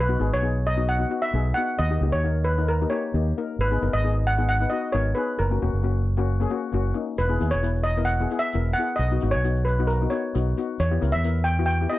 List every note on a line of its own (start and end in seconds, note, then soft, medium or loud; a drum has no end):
0.00 0.16 B1 medium
0.00 0.35 B4 medium
0.08 0.16 B3 medium
0.08 0.16 D#4 medium
0.08 0.16 F#4 medium
0.19 0.30 G#1 medium
0.19 0.34 B3 medium
0.19 0.34 D#4 medium
0.19 0.35 G#4 medium
0.33 1.04 B1 medium
0.33 0.67 C#5 medium
0.42 0.63 B3 medium
0.42 0.64 D#4 medium
0.42 0.64 G#4 medium
0.67 0.87 D#5 medium
0.77 0.90 B3 medium
0.77 0.91 D#4 medium
0.77 0.91 F#4 medium
0.89 1.21 F#5 medium
0.99 1.06 B3 medium
0.99 1.06 D#4 medium
0.99 1.06 F#4 medium
1.10 1.24 B3 medium
1.10 1.24 D#4 medium
1.10 1.25 F#4 medium
1.22 1.57 E5 medium
1.33 1.51 B1 medium
1.33 1.47 B3 medium
1.33 1.48 D#4 medium
1.33 1.48 G#4 medium
1.54 1.77 B3 medium
1.54 1.77 D#4 medium
1.54 1.77 F#4 medium
1.54 1.78 F#5 medium
1.79 1.97 D#2 medium
1.79 2.14 D#5 medium
1.90 1.97 A#3 medium
1.90 1.97 D#4 medium
1.90 1.97 G4 medium
2.01 2.10 C#2 medium
2.01 2.15 A#3 medium
2.01 2.16 D#4 medium
2.01 2.16 G4 medium
2.12 2.84 D#2 medium
2.12 2.47 C#5 medium
2.24 2.44 A#3 medium
2.24 2.45 D#4 medium
2.24 2.45 A#4 medium
2.44 2.69 B4 medium
2.58 2.71 A#3 medium
2.58 2.71 D#4 medium
2.58 2.72 A#4 medium
2.68 2.79 A#4 medium
2.81 2.87 A#3 medium
2.81 2.88 D#4 medium
2.81 2.88 G4 medium
2.90 3.05 A#3 medium
2.90 3.05 D#4 medium
2.90 3.06 G4 medium
2.90 3.33 C#5 medium
3.14 3.32 D#2 medium
3.14 3.28 A#3 medium
3.14 3.28 D#4 medium
3.14 3.28 G4 medium
3.38 3.57 A#3 medium
3.38 3.58 D#4 medium
3.38 3.58 A#4 medium
3.59 3.77 G#1 medium
3.59 3.95 B4 medium
3.71 3.77 B3 medium
3.71 3.77 D#4 medium
3.71 3.78 G#4 medium
3.81 3.91 F#1 medium
3.81 3.95 B3 medium
3.81 3.96 D#4 medium
3.81 3.96 A#4 medium
3.93 4.65 G#1 medium
3.93 4.24 D#5 medium
4.03 4.24 B3 medium
4.03 4.24 D#4 medium
4.03 4.25 G#4 medium
4.27 4.47 F#5 medium
4.38 4.51 B3 medium
4.38 4.51 D#4 medium
4.38 4.52 G#4 medium
4.49 4.72 F#5 medium
4.60 4.67 B3 medium
4.60 4.67 D#4 medium
4.60 4.68 B4 medium
4.70 4.85 B3 medium
4.70 4.86 D#4 medium
4.70 4.86 F#4 medium
4.70 4.94 D#5 medium
4.92 5.12 G#1 medium
4.92 5.08 B3 medium
4.92 5.08 D#4 medium
4.92 5.08 A#4 medium
4.92 5.14 C#5 medium
5.15 5.37 B3 medium
5.15 5.37 D#4 medium
5.15 5.37 G#4 medium
5.15 5.37 B4 medium
5.39 5.57 F#1 medium
5.39 6.70 A#4 medium
5.51 5.57 A#3 medium
5.51 5.57 C#4 medium
5.51 5.58 F#4 medium
5.62 5.71 E1 medium
5.62 5.76 A#3 medium
5.62 5.76 C#4 medium
5.62 5.76 F#4 medium
5.73 6.44 F#1 medium
5.83 6.04 A#3 medium
5.83 6.04 C#4 medium
5.83 6.05 F#4 medium
6.17 6.31 A#3 medium
6.17 6.31 C#4 medium
6.17 6.32 F#4 medium
6.40 6.47 A#3 medium
6.40 6.47 C#4 medium
6.40 6.48 G#4 medium
6.50 6.65 A#3 medium
6.50 6.65 C#4 medium
6.50 6.65 F#4 medium
6.72 6.92 F#1 medium
6.72 6.87 A#3 medium
6.72 6.88 C#4 medium
6.72 6.88 F#4 medium
6.94 7.16 A#3 medium
6.94 7.16 C#4 medium
6.94 7.16 D#4 medium
7.18 7.37 E1 medium
7.18 7.54 B4 medium
7.18 shaker medium
7.29 7.36 B3 medium
7.29 7.37 E4 medium
7.29 7.37 G#4 medium
7.40 7.51 D#2 medium
7.40 7.55 B3 medium
7.40 7.55 E4 medium
7.40 7.55 G#4 medium
7.40 shaker medium
7.51 8.25 E1 medium
7.51 7.87 C#5 medium
7.63 7.84 B3 medium
7.63 7.84 E4 medium
7.63 7.84 B4 medium
7.63 shaker medium
7.76 shaker soft
7.83 8.08 D#5 medium
7.83 shaker medium
7.97 8.11 B3 medium
7.97 8.11 E4 medium
7.97 8.11 A#4 medium
8.05 8.43 F#5 medium
8.05 shaker medium
8.20 8.27 B3 medium
8.20 8.27 E4 medium
8.20 8.28 G#4 medium
8.30 8.45 B3 medium
8.30 8.46 E4 medium
8.30 8.46 G#4 medium
8.30 shaker soft
8.39 8.76 E5 medium
8.53 8.73 E1 medium
8.53 8.68 B3 medium
8.53 8.68 E4 medium
8.53 8.69 A#4 medium
8.53 shaker medium
8.73 8.98 F#5 medium
8.73 shaker medium
8.78 8.98 B3 medium
8.78 8.98 E4 medium
8.78 8.98 G#4 medium
8.96 9.17 B1 medium
8.96 9.29 D#5 medium
8.96 shaker medium
9.11 9.18 B3 medium
9.11 9.18 D#4 medium
9.11 9.18 F#4 medium
9.21 9.32 G#1 medium
9.21 9.36 B3 medium
9.21 9.36 D#4 medium
9.21 9.36 F#4 medium
9.21 shaker medium
9.31 10.06 B1 medium
9.31 9.67 C#5 medium
9.44 9.64 B3 medium
9.44 9.65 D#4 medium
9.44 9.65 F#4 medium
9.44 shaker medium
9.56 shaker soft
9.65 9.87 B4 medium
9.65 shaker medium
9.79 9.92 B3 medium
9.79 9.92 D#4 medium
9.79 9.92 F#4 medium
9.87 10.11 A#4 medium
9.87 shaker medium
10.02 10.08 B3 medium
10.02 10.08 D#4 medium
10.02 10.08 F#4 medium
10.10 10.25 B3 medium
10.10 10.26 D#4 medium
10.10 10.26 F#4 medium
10.10 10.53 C#5 medium
10.10 shaker medium
10.35 10.53 B1 medium
10.35 10.48 B3 medium
10.35 10.49 D#4 medium
10.35 10.49 F#4 medium
10.35 shaker medium
10.57 10.78 B3 medium
10.57 10.78 D#4 medium
10.57 10.78 F#4 medium
10.57 shaker medium
10.80 10.97 E2 medium
10.80 11.11 C#5 medium
10.80 shaker medium
10.91 10.97 B3 medium
10.91 10.98 E4 medium
10.91 10.98 G4 medium
11.01 11.11 C#2 medium
11.01 11.15 B3 medium
11.01 11.16 E4 medium
11.01 11.16 A#4 medium
11.01 shaker medium
11.12 11.85 E2 medium
11.12 11.47 E5 medium
11.24 11.45 B3 medium
11.24 11.45 E4 medium
11.24 11.45 A#4 medium
11.24 shaker medium
11.37 shaker soft
11.44 11.65 G5 medium
11.44 shaker medium
11.59 11.72 B3 medium
11.59 11.72 E4 medium
11.59 11.72 F#4 medium
11.66 11.91 G5 medium
11.66 shaker medium
11.81 11.87 B3 medium
11.81 11.88 E4 medium
11.81 11.88 G4 medium
11.90 11.99 B3 medium
11.90 11.99 E4 medium
11.90 11.99 G4 medium
11.90 11.99 D#5 medium
11.90 shaker medium